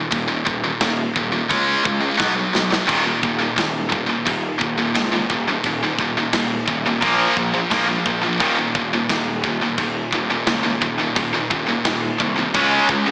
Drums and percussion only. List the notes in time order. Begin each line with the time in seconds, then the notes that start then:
0.12 kick, crash
0.47 kick
0.81 kick, snare, crash
1.16 kick
1.51 kick, crash
1.85 kick
2.20 kick, snare
2.55 snare
2.72 snare
2.89 kick, splash, crash
3.23 kick
3.58 kick, snare, crash
3.92 kick
4.27 kick, crash
4.61 kick
4.96 kick, snare, crash
5.30 kick
5.64 kick, crash
5.99 kick
6.33 kick, snare, crash
6.68 kick
7.02 kick, crash
7.37 kick
7.71 kick, snare, crash
8.06 kick
8.40 kick, crash
8.75 kick
9.09 kick, snare, crash
9.44 kick
9.78 kick, crash
10.13 kick
10.47 kick, snare, crash
10.82 kick
11.16 kick, crash
11.51 kick
11.85 kick, snare, crash
12.20 kick
12.54 kick, crash
12.89 kick